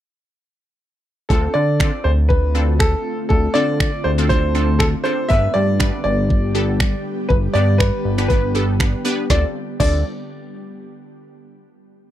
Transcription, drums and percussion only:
0, 0, Header, 1, 2, 480
1, 0, Start_track
1, 0, Tempo, 500000
1, 1250, Time_signature, 4, 2, 24, 8
1, 11626, End_track
2, 0, Start_track
2, 0, Title_t, "Drums"
2, 1250, Note_on_c, 9, 36, 108
2, 1346, Note_off_c, 9, 36, 0
2, 1729, Note_on_c, 9, 36, 111
2, 1730, Note_on_c, 9, 26, 110
2, 1825, Note_off_c, 9, 36, 0
2, 1826, Note_off_c, 9, 26, 0
2, 2210, Note_on_c, 9, 36, 108
2, 2306, Note_off_c, 9, 36, 0
2, 2690, Note_on_c, 9, 26, 109
2, 2691, Note_on_c, 9, 36, 108
2, 2786, Note_off_c, 9, 26, 0
2, 2787, Note_off_c, 9, 36, 0
2, 3170, Note_on_c, 9, 36, 106
2, 3266, Note_off_c, 9, 36, 0
2, 3650, Note_on_c, 9, 36, 111
2, 3651, Note_on_c, 9, 26, 110
2, 3746, Note_off_c, 9, 36, 0
2, 3747, Note_off_c, 9, 26, 0
2, 4131, Note_on_c, 9, 36, 110
2, 4227, Note_off_c, 9, 36, 0
2, 4609, Note_on_c, 9, 26, 117
2, 4611, Note_on_c, 9, 36, 107
2, 4705, Note_off_c, 9, 26, 0
2, 4707, Note_off_c, 9, 36, 0
2, 5091, Note_on_c, 9, 36, 108
2, 5187, Note_off_c, 9, 36, 0
2, 5570, Note_on_c, 9, 26, 108
2, 5570, Note_on_c, 9, 36, 109
2, 5666, Note_off_c, 9, 26, 0
2, 5666, Note_off_c, 9, 36, 0
2, 6051, Note_on_c, 9, 36, 114
2, 6147, Note_off_c, 9, 36, 0
2, 6530, Note_on_c, 9, 26, 110
2, 6531, Note_on_c, 9, 36, 104
2, 6626, Note_off_c, 9, 26, 0
2, 6627, Note_off_c, 9, 36, 0
2, 7011, Note_on_c, 9, 36, 111
2, 7107, Note_off_c, 9, 36, 0
2, 7490, Note_on_c, 9, 36, 111
2, 7491, Note_on_c, 9, 26, 107
2, 7586, Note_off_c, 9, 36, 0
2, 7587, Note_off_c, 9, 26, 0
2, 7857, Note_on_c, 9, 26, 64
2, 7953, Note_off_c, 9, 26, 0
2, 7971, Note_on_c, 9, 36, 109
2, 8067, Note_off_c, 9, 36, 0
2, 8450, Note_on_c, 9, 26, 112
2, 8451, Note_on_c, 9, 36, 102
2, 8546, Note_off_c, 9, 26, 0
2, 8547, Note_off_c, 9, 36, 0
2, 8929, Note_on_c, 9, 38, 87
2, 8930, Note_on_c, 9, 36, 101
2, 9025, Note_off_c, 9, 38, 0
2, 9026, Note_off_c, 9, 36, 0
2, 9410, Note_on_c, 9, 36, 105
2, 9410, Note_on_c, 9, 49, 83
2, 9506, Note_off_c, 9, 36, 0
2, 9506, Note_off_c, 9, 49, 0
2, 11626, End_track
0, 0, End_of_file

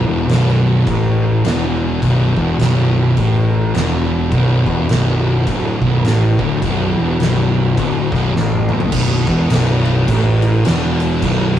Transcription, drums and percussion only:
0, 0, Header, 1, 2, 480
1, 0, Start_track
1, 0, Key_signature, 2, "minor"
1, 0, Tempo, 575264
1, 1683, Time_signature, 4, 2, 24, 8
1, 9673, End_track
2, 0, Start_track
2, 0, Title_t, "Drums"
2, 244, Note_on_c, 9, 49, 69
2, 261, Note_on_c, 9, 38, 124
2, 328, Note_off_c, 9, 49, 0
2, 344, Note_off_c, 9, 38, 0
2, 403, Note_on_c, 9, 38, 30
2, 487, Note_off_c, 9, 38, 0
2, 722, Note_on_c, 9, 49, 67
2, 725, Note_on_c, 9, 36, 118
2, 805, Note_off_c, 9, 49, 0
2, 808, Note_off_c, 9, 36, 0
2, 1206, Note_on_c, 9, 49, 70
2, 1223, Note_on_c, 9, 38, 124
2, 1290, Note_off_c, 9, 49, 0
2, 1307, Note_off_c, 9, 38, 0
2, 1686, Note_on_c, 9, 36, 103
2, 1690, Note_on_c, 9, 49, 60
2, 1770, Note_off_c, 9, 36, 0
2, 1774, Note_off_c, 9, 49, 0
2, 1974, Note_on_c, 9, 36, 98
2, 2057, Note_off_c, 9, 36, 0
2, 2164, Note_on_c, 9, 49, 67
2, 2181, Note_on_c, 9, 38, 109
2, 2248, Note_off_c, 9, 49, 0
2, 2265, Note_off_c, 9, 38, 0
2, 2644, Note_on_c, 9, 36, 108
2, 2644, Note_on_c, 9, 49, 65
2, 2728, Note_off_c, 9, 36, 0
2, 2728, Note_off_c, 9, 49, 0
2, 3125, Note_on_c, 9, 49, 65
2, 3142, Note_on_c, 9, 38, 127
2, 3209, Note_off_c, 9, 49, 0
2, 3225, Note_off_c, 9, 38, 0
2, 3602, Note_on_c, 9, 36, 105
2, 3602, Note_on_c, 9, 49, 62
2, 3686, Note_off_c, 9, 36, 0
2, 3686, Note_off_c, 9, 49, 0
2, 3891, Note_on_c, 9, 36, 103
2, 3975, Note_off_c, 9, 36, 0
2, 4081, Note_on_c, 9, 49, 67
2, 4098, Note_on_c, 9, 38, 127
2, 4165, Note_off_c, 9, 49, 0
2, 4181, Note_off_c, 9, 38, 0
2, 4563, Note_on_c, 9, 36, 109
2, 4564, Note_on_c, 9, 49, 70
2, 4647, Note_off_c, 9, 36, 0
2, 4647, Note_off_c, 9, 49, 0
2, 4854, Note_on_c, 9, 36, 98
2, 4937, Note_off_c, 9, 36, 0
2, 5045, Note_on_c, 9, 49, 72
2, 5062, Note_on_c, 9, 38, 117
2, 5129, Note_off_c, 9, 49, 0
2, 5145, Note_off_c, 9, 38, 0
2, 5333, Note_on_c, 9, 36, 120
2, 5417, Note_off_c, 9, 36, 0
2, 5524, Note_on_c, 9, 36, 107
2, 5526, Note_on_c, 9, 49, 66
2, 5608, Note_off_c, 9, 36, 0
2, 5610, Note_off_c, 9, 49, 0
2, 6006, Note_on_c, 9, 49, 63
2, 6023, Note_on_c, 9, 38, 123
2, 6090, Note_off_c, 9, 49, 0
2, 6106, Note_off_c, 9, 38, 0
2, 6488, Note_on_c, 9, 36, 117
2, 6488, Note_on_c, 9, 49, 63
2, 6571, Note_off_c, 9, 36, 0
2, 6571, Note_off_c, 9, 49, 0
2, 6776, Note_on_c, 9, 36, 107
2, 6794, Note_on_c, 9, 38, 35
2, 6860, Note_off_c, 9, 36, 0
2, 6877, Note_off_c, 9, 38, 0
2, 6980, Note_on_c, 9, 38, 73
2, 7063, Note_off_c, 9, 38, 0
2, 7109, Note_on_c, 9, 48, 71
2, 7192, Note_off_c, 9, 48, 0
2, 7250, Note_on_c, 9, 45, 94
2, 7333, Note_off_c, 9, 45, 0
2, 7345, Note_on_c, 9, 43, 99
2, 7428, Note_off_c, 9, 43, 0
2, 7443, Note_on_c, 9, 49, 81
2, 7443, Note_on_c, 9, 57, 120
2, 7447, Note_on_c, 9, 36, 106
2, 7526, Note_off_c, 9, 49, 0
2, 7526, Note_off_c, 9, 57, 0
2, 7531, Note_off_c, 9, 36, 0
2, 7733, Note_on_c, 9, 49, 63
2, 7737, Note_on_c, 9, 36, 100
2, 7816, Note_off_c, 9, 49, 0
2, 7820, Note_off_c, 9, 36, 0
2, 7927, Note_on_c, 9, 49, 100
2, 7944, Note_on_c, 9, 38, 122
2, 8010, Note_off_c, 9, 49, 0
2, 8027, Note_off_c, 9, 38, 0
2, 8220, Note_on_c, 9, 49, 67
2, 8303, Note_off_c, 9, 49, 0
2, 8409, Note_on_c, 9, 36, 116
2, 8410, Note_on_c, 9, 49, 97
2, 8492, Note_off_c, 9, 36, 0
2, 8493, Note_off_c, 9, 49, 0
2, 8695, Note_on_c, 9, 49, 69
2, 8779, Note_off_c, 9, 49, 0
2, 8884, Note_on_c, 9, 49, 97
2, 8901, Note_on_c, 9, 38, 127
2, 8968, Note_off_c, 9, 49, 0
2, 8984, Note_off_c, 9, 38, 0
2, 9178, Note_on_c, 9, 49, 67
2, 9261, Note_off_c, 9, 49, 0
2, 9364, Note_on_c, 9, 36, 115
2, 9364, Note_on_c, 9, 49, 89
2, 9448, Note_off_c, 9, 36, 0
2, 9448, Note_off_c, 9, 49, 0
2, 9673, End_track
0, 0, End_of_file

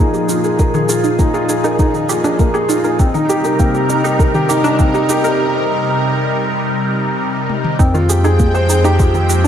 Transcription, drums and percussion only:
0, 0, Header, 1, 2, 480
1, 0, Start_track
1, 0, Tempo, 600000
1, 477, Time_signature, 4, 2, 24, 8
1, 7581, End_track
2, 0, Start_track
2, 0, Title_t, "Drums"
2, 112, Note_on_c, 9, 82, 20
2, 192, Note_off_c, 9, 82, 0
2, 231, Note_on_c, 9, 82, 68
2, 311, Note_off_c, 9, 82, 0
2, 352, Note_on_c, 9, 82, 28
2, 432, Note_off_c, 9, 82, 0
2, 472, Note_on_c, 9, 82, 37
2, 474, Note_on_c, 9, 36, 94
2, 552, Note_off_c, 9, 82, 0
2, 554, Note_off_c, 9, 36, 0
2, 594, Note_on_c, 9, 82, 18
2, 674, Note_off_c, 9, 82, 0
2, 711, Note_on_c, 9, 82, 70
2, 791, Note_off_c, 9, 82, 0
2, 832, Note_on_c, 9, 82, 30
2, 912, Note_off_c, 9, 82, 0
2, 952, Note_on_c, 9, 82, 40
2, 954, Note_on_c, 9, 36, 99
2, 1032, Note_off_c, 9, 82, 0
2, 1034, Note_off_c, 9, 36, 0
2, 1074, Note_on_c, 9, 82, 20
2, 1154, Note_off_c, 9, 82, 0
2, 1193, Note_on_c, 9, 82, 66
2, 1273, Note_off_c, 9, 82, 0
2, 1314, Note_on_c, 9, 82, 29
2, 1394, Note_off_c, 9, 82, 0
2, 1433, Note_on_c, 9, 82, 38
2, 1434, Note_on_c, 9, 36, 103
2, 1513, Note_off_c, 9, 82, 0
2, 1514, Note_off_c, 9, 36, 0
2, 1555, Note_on_c, 9, 82, 19
2, 1635, Note_off_c, 9, 82, 0
2, 1674, Note_on_c, 9, 82, 62
2, 1754, Note_off_c, 9, 82, 0
2, 1794, Note_on_c, 9, 82, 30
2, 1874, Note_off_c, 9, 82, 0
2, 1914, Note_on_c, 9, 82, 42
2, 1915, Note_on_c, 9, 36, 94
2, 1994, Note_off_c, 9, 82, 0
2, 1995, Note_off_c, 9, 36, 0
2, 2035, Note_on_c, 9, 82, 20
2, 2115, Note_off_c, 9, 82, 0
2, 2154, Note_on_c, 9, 82, 66
2, 2234, Note_off_c, 9, 82, 0
2, 2273, Note_on_c, 9, 82, 28
2, 2353, Note_off_c, 9, 82, 0
2, 2395, Note_on_c, 9, 82, 37
2, 2396, Note_on_c, 9, 36, 96
2, 2475, Note_off_c, 9, 82, 0
2, 2476, Note_off_c, 9, 36, 0
2, 2516, Note_on_c, 9, 82, 19
2, 2596, Note_off_c, 9, 82, 0
2, 2635, Note_on_c, 9, 82, 70
2, 2715, Note_off_c, 9, 82, 0
2, 2754, Note_on_c, 9, 82, 28
2, 2834, Note_off_c, 9, 82, 0
2, 2875, Note_on_c, 9, 82, 41
2, 2876, Note_on_c, 9, 36, 97
2, 2955, Note_off_c, 9, 82, 0
2, 2956, Note_off_c, 9, 36, 0
2, 2995, Note_on_c, 9, 82, 20
2, 3075, Note_off_c, 9, 82, 0
2, 3115, Note_on_c, 9, 82, 70
2, 3195, Note_off_c, 9, 82, 0
2, 3237, Note_on_c, 9, 82, 28
2, 3317, Note_off_c, 9, 82, 0
2, 3356, Note_on_c, 9, 36, 99
2, 3358, Note_on_c, 9, 82, 38
2, 3436, Note_off_c, 9, 36, 0
2, 3438, Note_off_c, 9, 82, 0
2, 3475, Note_on_c, 9, 82, 19
2, 3555, Note_off_c, 9, 82, 0
2, 3595, Note_on_c, 9, 82, 65
2, 3675, Note_off_c, 9, 82, 0
2, 3715, Note_on_c, 9, 82, 30
2, 3795, Note_off_c, 9, 82, 0
2, 3833, Note_on_c, 9, 82, 43
2, 3836, Note_on_c, 9, 36, 105
2, 3913, Note_off_c, 9, 82, 0
2, 3916, Note_off_c, 9, 36, 0
2, 3955, Note_on_c, 9, 82, 21
2, 4035, Note_off_c, 9, 82, 0
2, 4074, Note_on_c, 9, 82, 69
2, 4154, Note_off_c, 9, 82, 0
2, 4195, Note_on_c, 9, 82, 30
2, 4275, Note_off_c, 9, 82, 0
2, 5996, Note_on_c, 9, 48, 63
2, 6076, Note_off_c, 9, 48, 0
2, 6116, Note_on_c, 9, 47, 73
2, 6196, Note_off_c, 9, 47, 0
2, 6237, Note_on_c, 9, 36, 101
2, 6237, Note_on_c, 9, 82, 40
2, 6317, Note_off_c, 9, 36, 0
2, 6317, Note_off_c, 9, 82, 0
2, 6358, Note_on_c, 9, 82, 20
2, 6438, Note_off_c, 9, 82, 0
2, 6476, Note_on_c, 9, 82, 71
2, 6556, Note_off_c, 9, 82, 0
2, 6595, Note_on_c, 9, 82, 31
2, 6675, Note_off_c, 9, 82, 0
2, 6715, Note_on_c, 9, 82, 42
2, 6717, Note_on_c, 9, 36, 95
2, 6795, Note_off_c, 9, 82, 0
2, 6797, Note_off_c, 9, 36, 0
2, 6838, Note_on_c, 9, 82, 22
2, 6918, Note_off_c, 9, 82, 0
2, 6956, Note_on_c, 9, 82, 74
2, 7036, Note_off_c, 9, 82, 0
2, 7077, Note_on_c, 9, 82, 30
2, 7157, Note_off_c, 9, 82, 0
2, 7195, Note_on_c, 9, 82, 40
2, 7197, Note_on_c, 9, 36, 107
2, 7275, Note_off_c, 9, 82, 0
2, 7277, Note_off_c, 9, 36, 0
2, 7316, Note_on_c, 9, 82, 20
2, 7396, Note_off_c, 9, 82, 0
2, 7436, Note_on_c, 9, 82, 68
2, 7516, Note_off_c, 9, 82, 0
2, 7581, End_track
0, 0, End_of_file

